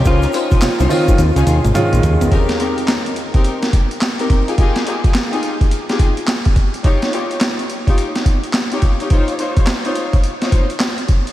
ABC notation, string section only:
X:1
M:4/4
L:1/16
Q:"Swing 16ths" 1/4=106
K:Fm
V:1 name="String section"
[DEFc] z [DEFc] z2 [DEFc] z3 [DEFA] z6 | [CEGB] z [CEGB] z4 [CEGB] z4 z [CEGB] z [EFGA] | [EFGA] z [EFGA] z2 [EFGA] z3 [EFGA] z6 | [EFGd] z [EFGd] z4 [EFGd] z4 z [EFGd] z [EFGd] |
[EFcd] z [EFcd] z2 [EFcd] z3 [EFcd] z6 |]